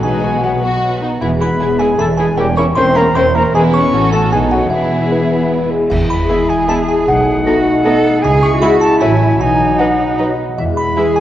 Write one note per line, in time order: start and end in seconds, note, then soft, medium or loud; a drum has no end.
0.00 1.02 B1 medium
0.00 1.02 B2 medium
0.00 0.22 F#3 medium
0.00 0.22 D#4 medium
0.00 0.32 F#4 medium
0.00 0.43 G#4 medium
0.00 0.22 B4 medium
0.00 0.45 G#5 medium
0.00 0.40 G#5 medium
0.04 1.24 B2 medium
0.04 0.43 G#3 medium
0.14 1.11 B3 medium
0.23 1.01 F#3 medium
0.23 0.44 B3 medium
0.23 0.43 F#4 medium
0.33 0.52 F#4 soft
0.41 0.81 F#3 medium
0.41 0.63 F#3 medium
0.41 0.50 B3 medium
0.41 0.82 F#4 medium
0.41 0.62 B4 medium
0.41 1.23 D#5 medium
0.41 0.83 F#5 medium
0.41 0.81 F#5 medium
0.53 0.92 F#4 soft
0.62 0.83 B3 soft
0.62 0.82 F#4 medium
0.62 1.01 F#4 medium
0.62 0.81 F#5 medium
0.73 1.24 D#6 medium
0.82 1.01 F#3 soft
0.82 1.01 B4 medium
0.82 1.24 F#5 medium
0.93 1.24 F#4 soft
1.01 1.24 F#3 soft
1.01 1.21 B3 medium
1.01 1.10 D#4 medium
1.01 1.22 F#4 medium
1.12 2.40 B3 soft
1.20 1.56 E1 medium
1.20 1.56 E2 medium
1.20 1.39 E3 medium
1.20 2.38 E3 medium
1.20 1.30 B3 medium
1.20 1.30 E4 medium
1.20 1.29 E4 medium
1.20 1.29 G#4 medium
1.20 1.27 E5 medium
1.20 1.40 E5 medium
1.32 2.28 G#3 medium
1.40 1.79 B3 medium
1.40 1.49 B3 medium
1.40 1.48 E4 medium
1.40 2.19 E4 medium
1.40 1.48 G#4 medium
1.40 1.83 B4 medium
1.40 1.80 B5 medium
1.40 1.78 B5 medium
1.51 1.70 E5 medium
1.59 1.95 E1 medium
1.59 1.95 E2 medium
1.59 1.68 B3 medium
1.59 1.68 E4 medium
1.59 1.69 G#4 medium
1.59 2.40 G#4 medium
1.71 2.09 E5 medium
1.78 1.99 G#3 medium
1.78 1.88 B3 medium
1.78 1.86 E4 medium
1.78 1.87 G#4 medium
1.78 2.00 G#4 medium
1.78 1.98 G#5 medium
1.78 1.99 E6 medium
1.90 2.40 G#5 medium
1.97 2.34 E1 medium
1.97 2.34 E2 medium
1.97 2.07 A3 medium
1.97 2.06 B3 medium
1.97 2.07 E4 medium
1.97 2.06 G#4 medium
1.97 2.10 A4 medium
1.97 2.17 A5 loud
1.97 2.05 A5 medium
1.97 3.95 E6 medium
2.10 2.88 E5 medium
2.17 2.38 G#3 medium
2.17 2.25 B3 medium
2.17 2.26 E4 medium
2.17 2.57 E4 medium
2.17 2.25 G#4 medium
2.17 2.28 G#4 medium
2.17 2.36 G#5 medium
2.17 2.38 G#5 medium
2.29 2.40 G#3 medium
2.36 2.72 E1 medium
2.36 2.73 E2 medium
2.36 3.54 E3 medium
2.36 2.58 G3 medium
2.36 2.45 C#4 medium
2.36 2.45 E4 medium
2.36 2.48 G4 loud
2.36 2.44 A#4 medium
2.36 2.56 G5 loud
2.36 2.57 G5 medium
2.49 3.56 A#3 medium
2.56 2.65 C#4 medium
2.56 2.66 C#4 medium
2.56 2.65 E4 medium
2.56 3.45 E4 medium
2.56 2.64 A#4 medium
2.56 2.67 C#5 medium
2.56 2.75 C#6 loud
2.56 2.63 C#6 medium
2.69 3.35 C#5 medium
2.75 3.11 E1 medium
2.75 3.11 E2 medium
2.75 2.96 C4 loud
2.75 2.85 C#4 medium
2.75 2.84 E4 medium
2.75 2.85 A#4 medium
2.75 3.57 A#4 medium
2.75 2.99 C5 loud
2.75 2.94 C6 loud
2.75 2.98 C6 loud
2.89 3.25 E5 medium
2.94 3.05 A#3 medium
2.94 3.04 C#4 medium
2.94 3.02 E4 medium
2.94 3.04 A#4 medium
2.94 3.16 A#4 medium
2.94 3.14 A#5 loud
2.94 3.18 A#5 medium
2.98 3.16 C#6 medium
3.08 3.57 A#5 medium
3.15 3.50 E1 medium
3.15 3.50 E2 medium
3.15 3.25 C4 loud
3.15 3.23 C#4 medium
3.15 3.23 E4 medium
3.15 3.24 A#4 medium
3.15 3.37 C5 loud
3.15 3.34 C6 loud
3.15 3.35 C6 loud
3.15 3.57 C#6 medium
3.27 3.95 E5 medium
3.34 3.43 A#3 medium
3.34 3.43 C#4 medium
3.34 3.42 E4 medium
3.34 3.54 A#4 loud
3.34 3.44 A#4 medium
3.34 3.56 C#5 medium
3.34 3.53 A#5 loud
3.34 3.43 A#5 medium
3.46 3.73 E4 medium
3.53 3.90 E1 medium
3.53 3.90 E2 medium
3.53 3.95 E3 medium
3.53 3.62 G#3 loud
3.53 3.91 B3 medium
3.53 3.90 E4 medium
3.53 3.63 G#4 loud
3.53 3.91 B4 medium
3.53 3.72 G#5 loud
3.53 3.62 G#5 medium
3.65 3.95 B3 medium
3.73 4.11 C#4 medium
3.73 3.95 E4 medium
3.73 4.12 C#5 medium
3.73 4.10 C#6 loud
3.73 4.12 C#6 loud
3.85 3.95 B4 medium
3.92 4.31 A1 medium
3.92 4.32 A2 medium
3.92 4.34 A2 medium
3.92 4.32 C#4 medium
3.92 4.32 F#4 medium
3.92 4.31 A4 medium
4.04 4.74 A3 medium
4.12 4.21 A3 medium
4.12 4.34 C#4 medium
4.12 4.31 A4 medium
4.12 4.31 A5 medium
4.12 4.32 A5 medium
4.23 4.73 F#4 medium
4.31 4.71 B1 medium
4.31 4.72 B2 medium
4.31 4.74 B2 medium
4.31 4.51 G#3 medium
4.31 4.70 B3 medium
4.31 4.72 D#4 medium
4.31 4.40 G#4 medium
4.31 4.71 A4 medium
4.31 4.50 G#5 loud
4.31 4.38 G#5 medium
4.43 4.74 F#3 medium
4.51 4.72 F#3 medium
4.51 4.80 B3 medium
4.51 4.61 F#4 medium
4.51 4.70 F#5 medium
4.51 4.72 F#5 medium
4.62 4.73 D#4 soft
4.70 5.68 E1 medium
4.70 5.68 E2 medium
4.70 5.89 E3 medium
4.70 5.50 E3 medium
4.70 5.69 B3 medium
4.70 5.68 E4 medium
4.70 5.49 E4 medium
4.70 5.70 G#4 medium
4.70 5.46 E5 medium
4.70 5.50 E5 medium
4.81 5.99 B3 soft
4.91 5.80 E4 soft
5.02 5.70 G#4 medium
5.11 5.20 E3 medium
5.11 6.28 B4 medium
5.21 5.61 E5 soft
5.30 5.72 B3 medium
5.30 5.50 G#5 medium
5.42 6.58 B5 medium
5.51 6.48 G#5 medium
5.62 6.38 E5 medium
5.71 5.90 G#3 medium
5.71 6.18 G#4 soft
5.81 6.08 E4 soft
5.90 6.23 E2 medium
5.90 7.09 E3 medium
5.90 7.04 G#3 medium
5.90 7.04 E4 medium
5.90 6.08 E5 medium
5.90 5.96 E5 medium
5.90 concert bass drum medium
5.90 crash medium
6.00 7.25 B3 medium
6.09 6.97 E4 medium
6.09 6.51 B5 medium
6.09 6.46 B5 loud
6.19 6.87 G#4 medium
6.29 6.44 G#3 medium
6.29 6.38 B3 medium
6.29 6.39 E4 medium
6.29 6.37 G#4 medium
6.29 7.43 G#4 medium
6.29 7.55 B4 medium
6.29 6.44 E5 medium
6.39 6.77 E5 medium
6.49 6.68 G#5 medium
6.59 8.25 B5 medium
6.68 6.83 G#3 medium
6.68 6.77 B3 medium
6.68 6.78 E4 medium
6.68 6.76 G#4 medium
6.68 6.82 E5 medium
6.68 7.09 G#5 medium
6.68 6.74 A5 medium
6.68 6.87 A5 loud
6.79 7.09 E5 medium
6.88 7.09 G#4 medium
6.88 6.94 G#5 medium
6.88 7.06 G#5 medium
6.98 7.09 E4 medium
7.07 7.40 B1 medium
7.07 8.25 B2 medium
7.07 8.24 A3 medium
7.07 8.24 D#4 medium
7.07 8.24 F#5 loud
7.07 8.20 F#5 loud
7.17 8.25 F#3 medium
7.27 8.12 B3 medium
7.36 8.03 D#4 medium
7.47 7.60 A3 medium
7.47 7.55 B3 medium
7.47 7.56 D#4 medium
7.47 7.85 F#4 medium
7.47 8.25 A4 medium
7.47 7.55 A4 medium
7.47 7.60 D#5 medium
7.56 7.94 B4 medium
7.66 7.83 D#5 medium
7.75 8.25 A5 medium
7.85 7.99 A3 medium
7.85 7.93 B3 medium
7.85 7.93 D#4 medium
7.85 8.23 A4 loud
7.85 7.94 A4 medium
7.85 8.25 D#5 medium
7.85 7.99 D#5 medium
7.95 8.25 B4 medium
8.05 8.25 D#4 medium
8.14 8.25 B3 medium
8.23 8.56 C#2 medium
8.23 9.03 C#3 medium
8.23 9.00 G#3 medium
8.23 9.38 E4 medium
8.23 8.61 G#4 loud
8.23 8.41 G#5 loud
8.23 8.42 G#5 loud
8.33 9.42 C#4 medium
8.42 9.03 G#3 medium
8.42 8.61 C#6 loud
8.53 8.71 E4 medium
8.62 8.70 G#3 medium
8.62 8.76 G#3 medium
8.62 8.70 E4 medium
8.62 9.00 F#4 medium
8.62 8.70 G#4 medium
8.62 9.03 G#4 medium
8.62 8.77 E5 medium
8.62 8.68 B5 loud
8.62 8.80 B5 loud
8.72 9.30 E4 medium
8.80 9.42 E5 medium
8.80 9.00 A5 loud
8.80 8.99 A5 loud
8.91 9.03 G#5 medium
9.00 9.34 A1 medium
9.00 9.42 A2 medium
9.00 10.38 F#3 loud
9.00 9.15 F#3 medium
9.00 9.09 A3 medium
9.00 9.39 E4 medium
9.00 9.09 E4 medium
9.00 9.09 F#4 medium
9.00 9.15 E5 medium
9.00 9.37 G#5 loud
9.00 9.39 G#5 medium
9.11 9.42 E3 medium
9.21 9.42 A3 medium
9.31 9.42 E4 medium
9.39 9.73 B1 medium
9.39 10.59 B2 medium
9.39 10.38 D#4 medium
9.39 9.80 G#5 loud
9.39 9.77 G#5 loud
9.50 11.20 B3 medium
9.59 10.47 F#3 medium
9.69 10.37 D#4 medium
9.78 9.88 F#3 medium
9.78 9.94 F#3 medium
9.78 9.88 D#4 medium
9.78 9.86 B4 medium
9.78 10.87 B4 medium
9.78 9.94 D#5 medium
9.78 10.18 F#5 medium
9.78 10.16 F#5 medium
9.89 10.27 F#4 medium
10.00 10.18 D#5 medium
10.09 11.15 B5 medium
10.17 10.33 F#3 medium
10.17 10.27 F#3 medium
10.17 10.25 D#4 medium
10.17 10.26 B4 medium
10.17 10.32 D#5 medium
10.17 10.60 D#5 medium
10.29 10.60 F#4 medium
10.38 10.60 D#4 medium
10.48 10.60 F#3 medium
10.57 10.91 E2 medium
10.57 11.20 E3 medium
10.57 11.20 G#3 medium
10.57 11.20 E4 medium
10.57 10.63 E5 medium
10.57 10.76 E5 loud
10.68 11.20 G#3 medium
10.76 11.20 E4 medium
10.76 11.14 B5 medium
10.76 11.14 B5 loud
10.88 11.20 B4 medium
10.96 11.11 G#3 medium
10.96 11.06 G#3 medium
10.96 11.04 E4 medium
10.96 11.20 G#4 medium
10.96 11.06 B4 medium
10.96 11.11 E5 medium
11.07 11.20 E5 medium
11.15 11.20 G#5 medium
11.15 11.20 G#5 loud
11.15 11.20 B5 medium